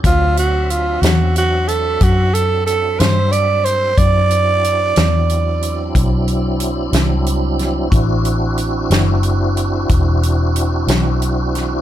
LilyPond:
<<
  \new Staff \with { instrumentName = "Tenor saxophone" } { \time 12/8 \key d \mixolydian \tempo 4. = 61 f'8 fis'8 f'8 fis'8 fis'8 a'8 fis'8 a'8 a'8 c''8 d''8 c''8 | d''2. r2. | r1. | }
  \new Staff \with { instrumentName = "Tonewheel organ" } { \time 12/8 \key d \mixolydian <fis c' d' e''>1. | <fis c' d' e'>1. | <c' d' e' fis'>1. | }
  \new Staff \with { instrumentName = "Fingered electric bass" } { \clef bass \time 12/8 \key d \mixolydian d,4. e,4. fis,4. g,4. | fis,4. e,4. b,,4. c,4. | a,,4. fis,,4. e,,4. b,,4. | }
  \new DrumStaff \with { instrumentName = "Drums" } \drummode { \time 12/8 <hh bd>8 hh8 hh8 <hh sn>8 hh8 hh8 <hh bd>8 hh8 hh8 <hh sn>8 hh8 hh8 | <hh bd>8 hh8 hh8 <hh sn>8 hh8 hh8 <hh bd>8 hh8 hh8 <hh sn>8 hh8 <hh sn>8 | <hh bd>8 hh8 hh8 <hh sn>8 hh8 hh8 <hh bd>8 hh8 hh8 <hh sn>8 hh8 <hh sn>8 | }
>>